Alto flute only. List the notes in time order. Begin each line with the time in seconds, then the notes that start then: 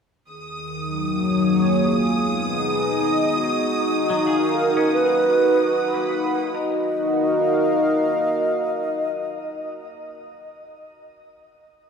0.29 G#4
1.48 F#4
1.85 F4
2.58 D#4
3.37 F#4
4.55 A#4
4.94 B4
6.54 D#5